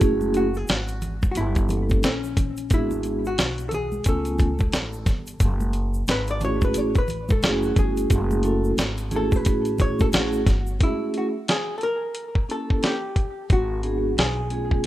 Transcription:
0.00 F#1 A3 C#4 E4 F#4 G#4, kick, closed hi-hat, shaker
0.21 high conga, shaker
0.34 F#4, closed hi-hat, shaker
0.54 G#4, shaker
0.68 G#1 F#4, snare, closed hi-hat, shaker
0.88 closed hi-hat, shaker
1.02 closed hi-hat, low conga, shaker
1.22 kick, high conga, shaker
1.31 F#4, closed hi-hat
1.36 G1 E4, shaker
1.55 kick, closed hi-hat, shaker
1.69 A#3 C#4 E4 G4 A4, closed hi-hat, low conga, shaker
1.89 kick, high conga, shaker
2.03 A#1 C#4, snare, closed hi-hat, shaker
2.24 shaker
2.37 kick, closed hi-hat, low conga, shaker
2.57 closed hi-hat, shaker
2.70 G#1 G#3 B3 D4 E4 F#4 G#4, kick, closed hi-hat, shaker
2.91 high conga, shaker
3.03 closed hi-hat, shaker
3.25 F#4, shaker
3.38 B1, snare, closed hi-hat, shaker
3.58 closed hi-hat, shaker
3.69 A4, closed hi-hat, low conga, shaker
3.74 G#4
3.92 high conga, shaker
4.04 C#2 A3 B3 C#4 F4 G#5, kick, closed hi-hat, shaker
4.09 A4
4.25 closed hi-hat, shaker
4.38 kick, closed hi-hat, low conga, shaker
4.59 kick, high conga, shaker
4.72 A1, snare, closed hi-hat, shaker
4.93 shaker
5.06 G1, kick, snare, closed hi-hat, low conga, shaker
5.27 closed hi-hat, shaker
5.40 F#1, kick, closed hi-hat, shaker
5.60 high conga, shaker
5.73 closed hi-hat, shaker
5.94 shaker
6.07 G#1 B4, snare, closed hi-hat, shaker
6.27 D5, closed hi-hat, shaker
6.41 A3 C#4 E4 F#4 G4 C#5, closed hi-hat, low conga, shaker
6.49 G#4
6.61 B4, kick, high conga, shaker
6.74 A1 C#5, closed hi-hat, shaker
6.95 B4, kick, closed hi-hat, shaker
7.08 closed hi-hat, low conga, shaker
7.29 A4, kick, high conga, shaker
7.43 F#1 A3 C#4 E4 F#4 G#4, snare, closed hi-hat, shaker
7.63 F#4, shaker
7.76 G1 G#4, kick, closed hi-hat, low conga, shaker
7.97 closed hi-hat, shaker
8.10 F#1, kick, closed hi-hat, shaker
8.31 high conga, shaker
8.43 A3 C#4 E4 F#4 A4, closed hi-hat, shaker
8.64 shaker
8.77 G#1, snare, closed hi-hat, shaker
8.98 closed hi-hat, shaker
9.11 A3 C#4 E4 F#4 G#4, closed hi-hat, low conga, shaker
9.16 A4
9.32 kick, high conga, shaker
9.36 B4
9.45 A1, kick, closed hi-hat, shaker
9.65 closed hi-hat, shaker
9.78 C#5, kick, closed hi-hat, low conga, shaker
9.99 A4, kick, high conga, shaker
10.12 A1 A3 C#4 E4 F#4 G#4, snare, closed hi-hat, shaker
10.33 shaker
10.46 G1, kick, snare, closed hi-hat, low conga, shaker
10.67 shaker
10.80 G#3 C#4 E4 F#4 G#4, kick, closed hi-hat
10.86 A3
11.14 F#4, closed hi-hat
11.48 G#4, snare, closed hi-hat
11.78 A4, closed hi-hat
11.83 A#4
12.15 closed hi-hat
12.35 kick
12.49 A#3 C#4 E4 G4 A4, closed hi-hat
12.70 kick
12.83 G4, snare, closed hi-hat
13.16 kick, closed hi-hat
13.50 G#1 F#4, kick, closed hi-hat
13.83 G#3 B3 D4 F#4 G#4, closed hi-hat
14.17 B1 G#4, snare, closed hi-hat
14.50 A3 B3 C#4 F4 G#4, closed hi-hat
14.71 kick

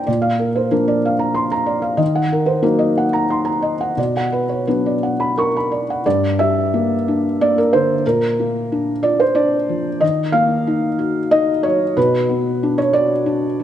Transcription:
Already playing: C5 G5
0.07 A#2 D5
0.22 F5
0.39 A#4
0.56 C5
0.71 F3 A#3 D4 A#4
0.88 D5
1.05 F5
1.19 A#5
1.34 C6
1.52 A#5
1.66 D5
1.82 F5
1.97 D#3 D#5
2.15 F#5
2.33 A#4
2.46 C5
2.62 F#3 A#3 D#4 A#4
2.79 D#5
2.98 F#5
3.13 A#5
3.30 C6
3.45 A#5
3.62 D#5
3.81 F#5
3.97 B2 D5
4.17 F#5
4.32 B4
4.49 C#5
4.67 F#3 B3 D4 B4
4.86 D5
5.03 F#5
5.20 B5
5.37 A#4 C#6
5.57 B5
5.71 D5
5.90 F#5
6.06 G2 D5
6.39 G3 E5
6.74 A#3
7.08 D4
7.41 A#3 D5
7.58 A#4
7.73 D3 C5
8.07 A#2 A#4
8.40 A#3
8.72 D4
9.03 F4 D5
9.20 C5
9.35 D4 D5
9.69 F3
10.01 D#3 D#5
10.32 A#3 F5
10.67 D#4
10.99 F#4
11.31 D#4 D#5
11.63 F#3 C#5
11.97 B2 B4
12.29 B3
12.63 D4
12.78 C#5
12.93 F#4 D5
13.26 D4
13.60 F#3

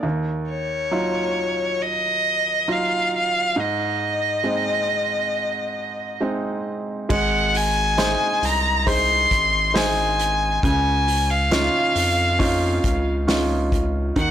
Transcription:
0.03 D#2
0.49 C#5
0.91 F#3 D#4 F4
1.82 D#5
2.68 F#3 D#4 F4
2.72 F5
3.17 F5
3.56 G#2
3.61 D#5
4.44 G#3 C4 D#4
6.21 G#3 C4 D#4
7.09 G#1 G#3 F#5, kick, crash
7.54 G#5, hi-hat pedal, open hi-hat
7.97 D#4 G#4 C5, snare, hi-hat pedal, open hi-hat
8.42 C2 A#5, hi-hat pedal, open hi-hat
8.86 D#4 G#4 C5 C6, kick, hi-hat pedal, open hi-hat
9.31 G#1, kick, hi-hat pedal, open hi-hat
9.74 D#4 G#4 C5 G#5, snare, hi-hat pedal, open hi-hat
10.19 hi-hat pedal, open hi-hat
10.63 C#2 C#3 G#5, kick, hi-hat pedal, open hi-hat
11.08 hi-hat pedal, open hi-hat
11.30 F5
11.51 C#4 D#4 F4, snare, hi-hat pedal, open hi-hat
11.95 F2, hi-hat pedal, open hi-hat
12.39 C#4 D#4 F4, kick, hi-hat pedal, open hi-hat
12.84 C#2, kick, hi-hat pedal, open hi-hat
13.27 C#4 D#4 F4, snare, hi-hat pedal, open hi-hat
13.72 kick, hi-hat pedal, open hi-hat
14.16 D#2 D#3 F#5, kick, hi-hat pedal, open hi-hat

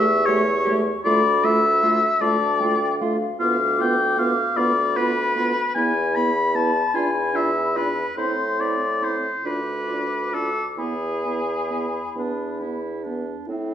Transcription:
Already playing: E2 E5 C#6
0.25 A3 G4 C#5
0.64 A3 G4
1.04 D2 A3 F4 D5 B5
1.44 A3 F4 E5
1.82 A3 F4
2.20 D2 A3 F4 D5 A5
2.60 A3 F4 G5
3.00 A3 F4 F5
3.39 D2 B3 F4 F5 D6
3.78 B3 F4 G5
4.17 B3 F4 F5
4.56 D2 B3 F4 D5 B5
4.96 B3 F4 B4
5.36 B3 F4
5.75 E2 B3 E4 G#5 B5
6.15 B3 E4 B5
6.55 B3 E4 A5
6.94 E2 D4 F4 G#5
7.34 D4 F4 E5
7.76 D4 F4 B4
8.17 A2 C4 E4 C5 C6
8.60 C4 E4 D5
9.01 C4 E4 C5
9.44 D2 D4 F4 B4 D6
9.87 D4 F4
10.32 D4 F4 A4
10.77 E2 B3 E4 G#4 B5
11.24 B3 E4
11.70 B3 E4
12.16 E2 B3 D4
12.61 B3 E4
13.04 B3 D4
13.48 A2 C4 E4

